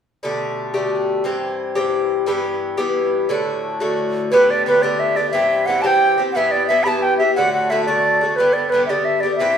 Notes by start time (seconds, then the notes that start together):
0.23 B2 D3 A3 G4
0.74 B2 D3 A3 G4
1.24 G2 E3 C4 G4
1.75 G2 E3 C4 G4
2.26 G2 E3 B3 G4
2.77 G2 E3 B3 G4
3.29 A2 D3 A3 F#4
3.80 A2 D3 A3 F#4
4.32 A2 D3 B3 G4 B4
4.50 D5
4.66 A2 D3 B3 G4 B4
4.82 A2 D3 B3 G4 D5
5.00 E5
5.16 D3 B3 G4 D5
5.31 G2 E3 C4 G4 E5
5.66 G2 E3 C4 F#5
5.70 G4
5.82 G2 E3 C4 G4 A5
5.86 G5
6.18 E3 C4 G4
6.32 G2 E3 F#5
6.36 B3 G4 E5
6.51 D5
6.67 G2 E3 B3 E5
6.72 G4
6.84 E3 B3 G4 B5
6.88 G2 A5
7.02 G5
7.18 B3 G4 E5
7.22 E3
7.35 A2 D3 A3 F#4 F#5
7.53 F#5
7.70 A2 D3 A3 F#4 E5
7.85 A2 D3 A3 F#4 D5
8.21 D3 A3 F#4
8.36 G2 D3 B3 B4
8.40 G4
8.53 D5
8.70 G2 B4
8.74 D3 B3 G4
8.86 G4 D5 E5
8.90 G2 D3 B3
9.05 E5
9.20 B3 G4 D5
9.26 D3
9.36 G2 E5
9.40 E3 C4 G4